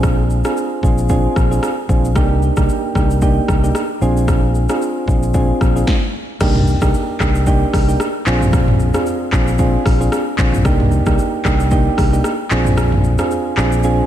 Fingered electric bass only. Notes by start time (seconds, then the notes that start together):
Already playing: A#1
0.83 A#1
1.36 A#1
1.89 A#1
2.16 C2
2.57 C2
2.95 C2
3.49 C2
4.01 A#1
5.08 A#1
5.61 A#1
6.41 C2
6.82 C2
7.20 C2
7.73 C2
8.27 A#1
9.32 A#1
9.86 A#1
10.38 A#1
10.65 C2
11.06 C2
11.45 C2
11.98 C2
12.51 A#1
13.57 A#1